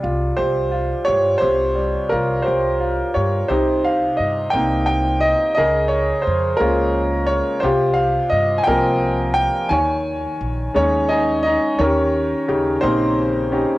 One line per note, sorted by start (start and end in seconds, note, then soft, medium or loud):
0.00 0.30 C2 medium
0.00 1.37 C3 medium
0.00 1.03 G3 soft
0.00 0.70 F4 soft
0.36 0.91 C2 medium
0.36 1.04 G4 soft
0.36 1.08 C5 medium
0.71 2.06 F4 soft
1.05 1.34 G2 medium
1.05 2.41 G4 soft
1.05 1.41 C#5 medium
1.38 3.46 C3 medium
1.38 2.11 C5 medium
1.42 1.95 C2 medium
1.75 3.11 G3 soft
2.09 2.38 C2 medium
2.09 2.78 F4 soft
2.09 2.46 A#4 medium
2.42 3.13 G4 soft
2.42 3.18 C5 medium
2.48 3.00 C2 medium
2.80 3.48 F4 soft
3.14 3.42 G2 medium
3.14 3.49 G4 soft
3.14 3.50 C#5 medium
3.48 4.03 C2 medium
3.48 5.53 C3 medium
3.48 4.50 D#4 soft
3.48 4.51 G4 soft
3.48 3.85 C5 medium
3.84 4.20 F5 medium
4.17 4.46 G2 medium
4.17 4.54 D#5 medium
4.50 5.33 C2 medium
4.50 5.54 A#3 soft
4.50 5.54 C4 soft
4.50 5.55 D#4 soft
4.50 4.84 G5 medium
4.86 5.23 G5 medium
5.20 5.53 D#5 medium
5.55 6.11 C#2 medium
5.55 7.60 C#3 medium
5.55 6.57 G#4 medium
5.55 6.55 A#4 medium
5.55 5.92 D#5 medium
5.88 6.26 C#5 medium
6.22 6.60 C5 medium
6.27 6.53 F2 medium
6.57 7.40 C#2 medium
6.57 7.60 G#3 soft
6.57 7.61 A#3 soft
6.57 7.60 F4 medium
6.57 7.30 A#4 medium
6.61 7.61 C#4 soft
7.27 7.64 C#5 medium
7.60 8.16 C2 medium
7.60 9.67 C3 medium
7.60 8.64 G4 medium
7.60 7.98 C5 medium
7.65 8.64 F4 medium
7.94 8.32 F5 medium
8.30 8.59 G2 medium
8.30 8.60 D#5 medium
8.58 8.66 G#5 medium
8.64 9.47 C2 medium
8.64 9.68 F3 soft
8.64 9.68 A#3 soft
8.64 9.68 C4 soft
8.64 9.31 G5 medium
8.68 9.67 A#4 medium
9.34 9.71 G5 loud
9.69 10.24 D#2 medium
9.69 11.76 D#3 medium
9.69 10.75 C#5 medium
9.69 11.05 G#5 medium
10.41 10.67 A#1 medium
10.74 11.56 D#2 medium
10.74 11.76 G#3 soft
10.74 10.76 C#4 soft
10.74 11.09 C#4 medium
10.74 11.09 D#4 soft
10.74 11.12 C#5 medium
11.09 11.43 D#4 medium
11.09 11.41 D#5 medium
11.09 11.42 G#5 medium
11.43 11.78 D#4 medium
11.43 11.80 D#5 medium
11.79 12.33 D#2 medium
11.79 13.78 D#3 medium
11.79 12.81 C#4 medium
11.79 12.47 G4 medium
11.79 12.81 A#4 medium
11.79 12.87 C#5 medium
12.48 12.76 D#2 medium
12.48 13.16 C#3 soft
12.48 12.81 D#4 soft
12.48 12.81 G4 medium
12.81 13.63 A#1 medium
12.81 13.50 A#3 soft
12.81 13.77 C4 medium
12.81 13.51 D#4 soft
12.81 13.51 G4 soft
12.81 13.76 C5 medium
13.52 13.78 C#4 soft
13.52 13.78 D#4 soft
13.52 13.78 G4 soft